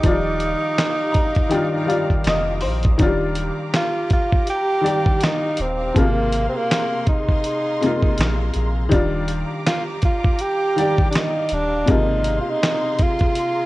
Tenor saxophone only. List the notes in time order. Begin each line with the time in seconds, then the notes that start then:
Already playing: D#4
3.76 F4
4.13 F4
4.50 G4
5.23 D#4
5.62 C4
5.98 A#3
6.49 C4
6.56 A#3
7.09 D#4
9.67 F4
10.05 F4
10.41 G4
11.11 D4
11.15 D#4
11.54 D4
11.90 D#4
12.41 F4
12.49 D#4
13.03 F4